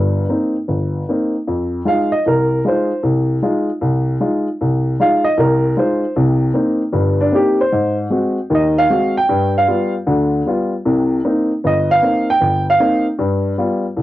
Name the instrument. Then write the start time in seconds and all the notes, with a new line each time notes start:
upright piano
Already playing: G1 G2
0.29 A#3 C4 D#4
0.68 G1
1.09 A#3 C4 D#4
1.48 F2
1.85 G#3 D#4 F4 F5
2.12 D#5
2.26 C2 A#4
2.65 G#3 D#4 F4 C5
3.03 C2
3.42 G#3 D#4 F4
3.81 C2
4.20 G#3 D#4 F4
4.61 C2
5.00 G#3 D#4 F4 F5
5.24 D#5
5.37 C2 A#4
5.77 G#3 D#4 F4 C5
6.16 C2 C3
6.54 A#3 C4 D#4
6.92 G1 G2
7.21 D4
7.32 A#3 C4 D#4 G4
7.61 C5
7.72 G#2
8.10 G#3 C4 F#4
8.50 D#2 D#3
8.55 D#5
8.78 F5
8.90 G#3 C4 F#4
9.17 G5
9.29 G2
9.58 F5
9.68 G3 B3 F4
10.07 D2 D3
10.46 G3 B3 F4
10.85 C2 C3
11.25 A#3 C4 D#4
11.64 G1 D#5
11.91 F5
12.02 A#3 C4 D#4
12.30 G5
12.41 G1
12.70 F5
12.80 A#3 C4 D#4
13.19 G2
13.58 G3 B3 F4
13.96 C2